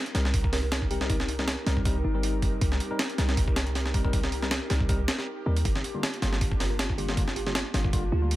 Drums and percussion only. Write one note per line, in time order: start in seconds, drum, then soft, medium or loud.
0.06 closed hi-hat soft
0.15 snare medium
0.15 open hi-hat medium
0.25 snare soft
0.34 kick loud
0.34 open hi-hat medium
0.44 kick medium
0.53 snare soft
0.53 open hi-hat medium
0.72 snare loud
0.72 open hi-hat medium
0.82 kick medium
0.91 open hi-hat medium
1.01 snare medium
1.10 kick loud
1.10 open hi-hat medium
1.20 snare soft
1.29 open hi-hat medium
1.39 snare soft
1.48 snare loud
1.48 open hi-hat medium
1.67 snare medium
1.67 open hi-hat medium
1.77 kick medium
1.85 kick loud
1.85 open hi-hat medium
2.23 open hi-hat medium
2.42 kick loud
2.42 open hi-hat medium
2.61 kick loud
2.61 open hi-hat medium
2.72 snare soft
2.80 open hi-hat medium
2.99 snare loud
2.99 open hi-hat medium
3.10 closed hi-hat soft
3.18 snare medium
3.18 open hi-hat medium
3.29 snare soft
3.37 kick loud
3.37 open hi-hat medium
3.48 kick loud
3.56 snare loud
3.56 open hi-hat medium
3.67 closed hi-hat soft
3.75 snare soft
3.75 open hi-hat medium
3.86 snare soft
3.94 kick loud
3.94 open hi-hat medium
4.05 kick medium
4.13 kick loud
4.13 open hi-hat medium
4.24 snare soft
4.32 open hi-hat medium
4.43 snare soft
4.51 snare loud
4.51 open hi-hat medium
4.70 snare medium
4.70 open hi-hat medium
4.80 kick medium
4.89 kick loud
4.89 open hi-hat medium
5.08 snare loud
5.08 open hi-hat medium
5.18 snare soft
5.57 open hi-hat medium
5.65 kick loud
5.65 open hi-hat medium
5.76 snare soft
5.84 open hi-hat medium
6.03 snare loud
6.03 open hi-hat medium
6.14 closed hi-hat soft
6.22 snare medium
6.22 open hi-hat medium
6.33 snare soft
6.41 kick loud
6.41 open hi-hat medium
6.52 kick loud
6.60 snare soft
6.60 open hi-hat medium
6.79 snare loud
6.79 open hi-hat medium
6.90 kick medium
6.98 open hi-hat medium
7.09 snare medium
7.17 kick loud
7.17 open hi-hat medium
7.28 snare soft
7.36 open hi-hat medium
7.47 snare soft
7.55 snare loud
7.55 open hi-hat medium
7.74 snare medium
7.74 open hi-hat medium
7.84 kick loud
7.93 kick loud
7.93 open hi-hat medium
8.31 open hi-hat medium